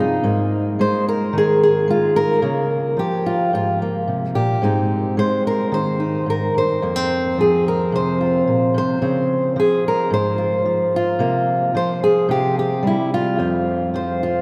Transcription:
0.00 0.23 G2 medium
0.00 0.24 C3 medium
0.00 0.25 F3 medium
0.00 0.23 C4 soft
0.00 1.35 D#4 medium
0.00 0.25 G#4 medium
0.23 2.39 G#2 medium
0.23 2.41 A#3 soft
0.79 1.87 G#3 medium
0.79 1.07 C5 medium
1.09 1.89 A#4 medium
1.33 2.39 D#3 medium
1.38 1.62 G#4 medium
1.63 1.89 G#4 medium
1.88 2.46 G#3 medium
1.88 2.44 F4 medium
2.16 2.98 A#4 medium
2.42 2.97 C#3 medium
2.42 3.79 A#3 soft
2.97 4.61 F3 medium
2.97 3.80 G4 medium
3.26 3.53 F4 medium
3.53 4.34 G#2 medium
3.53 4.63 F4 medium
3.82 4.63 A#3 soft
4.08 4.34 C3 medium
4.35 4.61 A#2 medium
4.35 5.17 G4 medium
4.62 6.25 G#2 medium
4.62 5.17 G#3 soft
4.62 6.83 C4 soft
4.62 5.99 D#4 soft
5.17 6.86 G#3 medium
5.17 5.45 C5 medium
5.47 5.73 A#4 medium
5.72 6.79 D#3 medium
5.72 6.28 C5 medium
6.00 6.79 D#4 soft
6.26 6.54 G#2 medium
6.26 6.56 A#4 medium
6.54 6.82 G2 medium
6.54 7.39 C5 medium
6.82 8.47 F2 medium
6.82 6.96 A#3 soft
6.96 9.01 C4 soft
7.38 9.55 F3 medium
7.38 7.66 G#4 medium
7.68 7.94 A#4 medium
7.92 8.73 C3 medium
7.92 8.76 C5 medium
8.21 10.38 F4 soft
8.47 8.75 A#2 medium
8.74 9.01 C3 medium
8.74 9.58 C5 medium
9.02 9.57 C#3 medium
9.02 11.20 C4 soft
9.56 10.64 F3 medium
9.56 9.85 G#4 medium
9.88 10.13 A#4 medium
10.10 11.17 G#2 medium
10.10 11.21 C5 medium
10.38 10.93 F4 soft
10.66 11.73 F3 medium
10.96 12.31 F4 medium
11.19 11.74 C3 medium
11.19 13.38 A#3 medium
11.75 12.29 F3 medium
11.75 12.03 C5 medium
12.04 12.30 G#4 medium
12.29 13.38 C3 medium
12.29 12.57 G4 medium
12.59 13.40 G4 medium
12.83 13.35 G3 medium
12.87 13.13 E4 medium
13.14 14.22 F4 medium
13.38 14.42 F2 medium
13.38 14.42 C4 soft
13.94 14.42 F3 medium
13.94 14.42 C5 medium
14.23 14.42 F4 medium

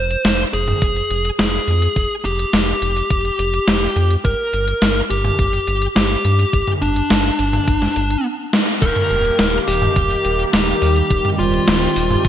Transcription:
0.00 0.16 F1 medium
0.00 0.42 C5 loud
0.11 closed hi-hat soft
0.25 0.45 F1 loud
0.25 snare loud
0.25 closed hi-hat medium
0.53 0.74 F1 loud
0.53 1.28 G#4 medium
0.53 closed hi-hat medium
0.68 closed hi-hat soft
0.68 mid tom medium
0.82 1.02 F1 medium
0.82 kick loud
0.82 closed hi-hat medium
0.96 closed hi-hat soft
1.10 1.31 F1 loud
1.10 closed hi-hat medium
1.25 closed hi-hat soft
1.39 1.59 F1 medium
1.39 2.13 G#4 medium
1.39 snare loud
1.39 closed hi-hat medium
1.68 1.88 F2 medium
1.68 closed hi-hat medium
1.82 closed hi-hat soft
1.96 2.06 F1 loud
1.96 kick loud
1.96 closed hi-hat medium
2.25 2.45 F1 medium
2.25 4.13 G4 medium
2.25 closed hi-hat medium
2.39 closed hi-hat soft
2.53 2.74 F1 loud
2.53 snare loud
2.53 closed hi-hat medium
2.82 3.02 F1 loud
2.82 closed hi-hat medium
2.96 closed hi-hat medium
3.10 3.31 F1 medium
3.10 kick loud
3.10 closed hi-hat medium
3.25 closed hi-hat soft
3.39 3.59 F1 loud
3.39 closed hi-hat medium
3.53 closed hi-hat soft
3.68 3.88 F1 medium
3.68 snare loud
3.68 closed hi-hat medium
3.96 4.16 F2 medium
3.96 closed hi-hat medium
4.10 closed hi-hat soft
4.25 4.35 G1 loud
4.25 4.99 A#4 medium
4.25 kick loud
4.25 closed hi-hat medium
4.53 4.74 G1 medium
4.53 closed hi-hat medium
4.68 closed hi-hat medium
4.82 5.02 G1 loud
4.82 snare loud
4.82 closed hi-hat medium
5.10 5.31 G1 medium
5.10 5.85 G4 medium
5.10 closed hi-hat medium
5.25 closed hi-hat medium
5.25 mid tom medium
5.39 5.59 G1 medium
5.39 kick loud
5.39 closed hi-hat medium
5.53 closed hi-hat soft
5.67 5.88 G1 loud
5.67 closed hi-hat medium
5.82 closed hi-hat medium
5.96 6.16 G1 medium
5.96 6.70 G4 loud
5.96 snare loud
5.96 closed hi-hat medium
6.25 6.45 G2 medium
6.25 closed hi-hat medium
6.39 closed hi-hat soft
6.53 6.63 G1 loud
6.53 kick loud
6.53 closed hi-hat medium
6.68 mid tom medium
6.82 7.02 G1 medium
6.82 8.25 D4 medium
6.82 closed hi-hat medium
6.96 closed hi-hat medium
7.10 7.31 G1 loud
7.10 snare loud
7.10 closed hi-hat medium
7.39 7.59 G1 loud
7.39 closed hi-hat medium
7.53 closed hi-hat medium
7.53 mid tom medium
7.68 7.88 G1 medium
7.68 kick loud
7.68 closed hi-hat medium
7.82 snare soft
7.82 closed hi-hat soft
7.96 8.17 G1 loud
7.96 closed hi-hat medium
8.10 closed hi-hat medium
8.53 snare medium
8.82 8.92 D#1 loud
8.82 12.28 D#3 medium
8.82 12.28 G3 medium
8.82 11.08 A#3 medium
8.82 12.28 G4 medium
8.82 9.56 A#4 medium
8.82 kick loud
8.82 closed hi-hat loud
8.82 crash loud
8.96 closed hi-hat soft
8.96 mid tom medium
9.10 9.31 D#1 medium
9.10 closed hi-hat soft
9.25 closed hi-hat soft
9.39 9.59 D#1 loud
9.39 snare loud
9.39 closed hi-hat loud
9.53 closed hi-hat soft
9.68 9.88 D#1 loud
9.68 10.42 G4 medium
9.68 open hi-hat medium
9.82 closed hi-hat soft
9.82 mid tom medium
9.96 10.16 D#1 loud
9.96 kick loud
9.96 closed hi-hat medium
10.11 closed hi-hat soft
10.25 10.45 D#1 loud
10.25 closed hi-hat medium
10.39 closed hi-hat soft
10.53 10.74 D#1 medium
10.53 11.28 G4 medium
10.53 snare loud
10.53 closed hi-hat loud
10.68 closed hi-hat soft
10.82 11.02 D#2 loud
10.82 open hi-hat medium
10.96 closed hi-hat soft
11.10 11.21 D#1 loud
11.10 12.28 C4 medium
11.10 kick loud
11.10 closed hi-hat loud
11.25 closed hi-hat soft
11.25 mid tom medium
11.39 11.59 D#1 medium
11.39 12.28 F4 loud
11.39 closed hi-hat soft
11.53 closed hi-hat soft
11.68 11.88 D#1 loud
11.68 snare loud
11.68 closed hi-hat loud
11.82 closed hi-hat soft
11.96 12.17 D#1 loud
11.96 open hi-hat medium
12.11 closed hi-hat soft
12.11 mid tom medium
12.25 12.28 D#1 loud
12.25 kick loud
12.25 closed hi-hat loud

